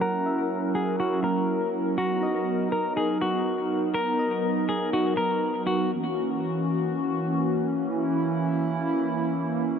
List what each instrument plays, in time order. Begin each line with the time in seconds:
Already playing: analog synth pad F#3 C#4 E4 A#4, synth keys A#3 E4 F#4
0.01 clean electric guitar A#4, synth keys F#5
0.26 synth keys E5
0.75 synth keys F#4, clean electric guitar G#4
1.00 synth keys E4, clean electric guitar F#4
1.24 synth keys A#3, clean electric guitar A#4
1.98 analog synth pad B3 D#4, clean electric guitar F#4, synth keys A#5
2.23 synth keys D#5
2.72 synth keys A#4, clean electric guitar A#4
2.96 synth keys D#4, clean electric guitar G#4
3.21 synth keys B3, clean electric guitar F#4
3.94 clean electric guitar A#4, synth keys A#5
4.19 synth keys D#5
4.69 clean electric guitar G#4, synth keys A#4
4.93 synth keys D#4, clean electric guitar F#4
5.17 synth keys B3, clean electric guitar A#4
5.67 clean electric guitar F#4
5.91 analog synth pad E3 A#3 C#4 F#4
7.88 analog synth pad E4